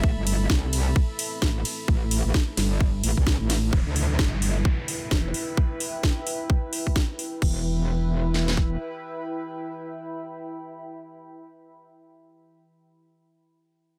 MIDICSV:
0, 0, Header, 1, 6, 480
1, 0, Start_track
1, 0, Key_signature, 1, "minor"
1, 0, Tempo, 461538
1, 36, Time_signature, 4, 2, 24, 8
1, 14548, End_track
2, 0, Start_track
2, 0, Title_t, "Ambient pad"
2, 0, Program_c, 0, 92
2, 0, Note_on_c, 0, 57, 79
2, 0, Note_on_c, 0, 60, 91
2, 0, Note_on_c, 0, 64, 84
2, 0, Note_on_c, 0, 71, 74
2, 3835, Note_off_c, 0, 57, 0
2, 3835, Note_off_c, 0, 64, 0
2, 3835, Note_off_c, 0, 71, 0
2, 3836, Note_off_c, 0, 60, 0
2, 3876, Note_on_c, 0, 76, 74
2, 3877, Note_on_c, 0, 64, 81
2, 3877, Note_on_c, 0, 79, 76
2, 3877, Note_on_c, 0, 83, 90
2, 7678, Note_off_c, 0, 64, 0
2, 7678, Note_off_c, 0, 76, 0
2, 7679, Note_off_c, 0, 79, 0
2, 7679, Note_off_c, 0, 83, 0
2, 7719, Note_on_c, 0, 64, 81
2, 7719, Note_on_c, 0, 76, 75
2, 7719, Note_on_c, 0, 83, 88
2, 7720, Note_on_c, 0, 79, 71
2, 12101, Note_off_c, 0, 76, 0
2, 12102, Note_off_c, 0, 64, 0
2, 12102, Note_off_c, 0, 79, 0
2, 12102, Note_off_c, 0, 83, 0
2, 14548, End_track
3, 0, Start_track
3, 0, Title_t, "Analog synth pad"
3, 0, Program_c, 1, 89
3, 0, Note_on_c, 1, 69, 74
3, 0, Note_on_c, 1, 76, 75
3, 0, Note_on_c, 1, 83, 92
3, 3879, Note_on_c, 1, 64, 69
3, 4206, Note_on_c, 1, 71, 92
3, 4518, Note_off_c, 1, 83, 0
3, 4761, Note_off_c, 1, 76, 0
3, 4951, Note_off_c, 1, 69, 0
3, 7705, Note_off_c, 1, 64, 0
3, 7717, Note_on_c, 1, 64, 75
3, 7718, Note_off_c, 1, 71, 0
3, 7805, Note_on_c, 1, 71, 74
3, 12099, Note_off_c, 1, 64, 0
3, 12187, Note_off_c, 1, 71, 0
3, 14548, End_track
4, 0, Start_track
4, 0, Title_t, "Wobble bass"
4, 0, Program_c, 2, 39
4, 36, Note_on_c, 2, 33, 103
4, 158, Note_off_c, 2, 33, 0
4, 180, Note_on_c, 2, 31, 98
4, 501, Note_off_c, 2, 31, 0
4, 517, Note_on_c, 2, 36, 102
4, 982, Note_off_c, 2, 36, 0
4, 1477, Note_on_c, 2, 33, 101
4, 1701, Note_off_c, 2, 33, 0
4, 1957, Note_on_c, 2, 33, 98
4, 2318, Note_off_c, 2, 33, 0
4, 2342, Note_on_c, 2, 33, 96
4, 2422, Note_off_c, 2, 33, 0
4, 2676, Note_on_c, 2, 31, 98
4, 3141, Note_off_c, 2, 31, 0
4, 3158, Note_on_c, 2, 33, 103
4, 3278, Note_off_c, 2, 33, 0
4, 3301, Note_on_c, 2, 36, 97
4, 3518, Note_off_c, 2, 36, 0
4, 3542, Note_on_c, 2, 33, 104
4, 3862, Note_off_c, 2, 33, 0
4, 3878, Note_on_c, 2, 28, 94
4, 3998, Note_off_c, 2, 28, 0
4, 4021, Note_on_c, 2, 38, 92
4, 4341, Note_off_c, 2, 38, 0
4, 4357, Note_on_c, 2, 31, 102
4, 4822, Note_off_c, 2, 31, 0
4, 5317, Note_on_c, 2, 28, 97
4, 5542, Note_off_c, 2, 28, 0
4, 7717, Note_on_c, 2, 28, 93
4, 9115, Note_off_c, 2, 28, 0
4, 14548, End_track
5, 0, Start_track
5, 0, Title_t, "Downlifter"
5, 0, Program_c, 3, 103
5, 3878, Note_on_c, 3, 60, 74
5, 7717, Note_off_c, 3, 60, 0
5, 14548, End_track
6, 0, Start_track
6, 0, Title_t, "Drums"
6, 37, Note_on_c, 9, 36, 112
6, 141, Note_off_c, 9, 36, 0
6, 277, Note_on_c, 9, 46, 101
6, 277, Note_on_c, 9, 51, 86
6, 381, Note_off_c, 9, 46, 0
6, 381, Note_off_c, 9, 51, 0
6, 516, Note_on_c, 9, 38, 119
6, 517, Note_on_c, 9, 36, 116
6, 620, Note_off_c, 9, 38, 0
6, 621, Note_off_c, 9, 36, 0
6, 757, Note_on_c, 9, 46, 90
6, 757, Note_on_c, 9, 51, 83
6, 861, Note_off_c, 9, 46, 0
6, 861, Note_off_c, 9, 51, 0
6, 997, Note_on_c, 9, 36, 114
6, 1101, Note_off_c, 9, 36, 0
6, 1237, Note_on_c, 9, 46, 105
6, 1237, Note_on_c, 9, 51, 81
6, 1341, Note_off_c, 9, 46, 0
6, 1341, Note_off_c, 9, 51, 0
6, 1476, Note_on_c, 9, 38, 120
6, 1477, Note_on_c, 9, 36, 118
6, 1580, Note_off_c, 9, 38, 0
6, 1581, Note_off_c, 9, 36, 0
6, 1717, Note_on_c, 9, 46, 91
6, 1717, Note_on_c, 9, 51, 82
6, 1821, Note_off_c, 9, 46, 0
6, 1821, Note_off_c, 9, 51, 0
6, 1957, Note_on_c, 9, 36, 113
6, 2061, Note_off_c, 9, 36, 0
6, 2197, Note_on_c, 9, 46, 111
6, 2197, Note_on_c, 9, 51, 84
6, 2301, Note_off_c, 9, 46, 0
6, 2301, Note_off_c, 9, 51, 0
6, 2436, Note_on_c, 9, 38, 123
6, 2437, Note_on_c, 9, 36, 125
6, 2540, Note_off_c, 9, 38, 0
6, 2541, Note_off_c, 9, 36, 0
6, 2676, Note_on_c, 9, 38, 65
6, 2677, Note_on_c, 9, 46, 91
6, 2677, Note_on_c, 9, 51, 83
6, 2780, Note_off_c, 9, 38, 0
6, 2781, Note_off_c, 9, 46, 0
6, 2781, Note_off_c, 9, 51, 0
6, 2917, Note_on_c, 9, 36, 116
6, 3021, Note_off_c, 9, 36, 0
6, 3157, Note_on_c, 9, 46, 107
6, 3157, Note_on_c, 9, 51, 82
6, 3261, Note_off_c, 9, 46, 0
6, 3261, Note_off_c, 9, 51, 0
6, 3301, Note_on_c, 9, 36, 61
6, 3396, Note_on_c, 9, 38, 122
6, 3397, Note_off_c, 9, 36, 0
6, 3397, Note_on_c, 9, 36, 122
6, 3500, Note_off_c, 9, 38, 0
6, 3501, Note_off_c, 9, 36, 0
6, 3637, Note_on_c, 9, 38, 88
6, 3637, Note_on_c, 9, 46, 88
6, 3637, Note_on_c, 9, 51, 83
6, 3741, Note_off_c, 9, 38, 0
6, 3741, Note_off_c, 9, 46, 0
6, 3741, Note_off_c, 9, 51, 0
6, 3877, Note_on_c, 9, 36, 114
6, 3981, Note_off_c, 9, 36, 0
6, 4117, Note_on_c, 9, 46, 102
6, 4221, Note_off_c, 9, 46, 0
6, 4356, Note_on_c, 9, 38, 121
6, 4357, Note_on_c, 9, 36, 117
6, 4460, Note_off_c, 9, 38, 0
6, 4461, Note_off_c, 9, 36, 0
6, 4597, Note_on_c, 9, 46, 92
6, 4701, Note_off_c, 9, 46, 0
6, 4837, Note_on_c, 9, 36, 116
6, 4941, Note_off_c, 9, 36, 0
6, 5077, Note_on_c, 9, 46, 103
6, 5181, Note_off_c, 9, 46, 0
6, 5316, Note_on_c, 9, 38, 122
6, 5317, Note_on_c, 9, 36, 119
6, 5420, Note_off_c, 9, 38, 0
6, 5421, Note_off_c, 9, 36, 0
6, 5556, Note_on_c, 9, 46, 89
6, 5660, Note_off_c, 9, 46, 0
6, 5797, Note_on_c, 9, 36, 119
6, 5901, Note_off_c, 9, 36, 0
6, 6036, Note_on_c, 9, 46, 113
6, 6140, Note_off_c, 9, 46, 0
6, 6275, Note_on_c, 9, 38, 123
6, 6277, Note_on_c, 9, 36, 123
6, 6379, Note_off_c, 9, 38, 0
6, 6381, Note_off_c, 9, 36, 0
6, 6517, Note_on_c, 9, 46, 93
6, 6621, Note_off_c, 9, 46, 0
6, 6757, Note_on_c, 9, 36, 116
6, 6861, Note_off_c, 9, 36, 0
6, 6996, Note_on_c, 9, 46, 105
6, 7100, Note_off_c, 9, 46, 0
6, 7141, Note_on_c, 9, 36, 64
6, 7236, Note_on_c, 9, 38, 122
6, 7237, Note_off_c, 9, 36, 0
6, 7237, Note_on_c, 9, 36, 124
6, 7340, Note_off_c, 9, 38, 0
6, 7341, Note_off_c, 9, 36, 0
6, 7477, Note_on_c, 9, 46, 89
6, 7581, Note_off_c, 9, 46, 0
6, 7717, Note_on_c, 9, 36, 105
6, 7717, Note_on_c, 9, 49, 83
6, 7821, Note_off_c, 9, 36, 0
6, 7821, Note_off_c, 9, 49, 0
6, 8677, Note_on_c, 9, 38, 59
6, 8781, Note_off_c, 9, 38, 0
6, 8820, Note_on_c, 9, 38, 72
6, 8917, Note_on_c, 9, 36, 85
6, 8924, Note_off_c, 9, 38, 0
6, 9021, Note_off_c, 9, 36, 0
6, 14548, End_track
0, 0, End_of_file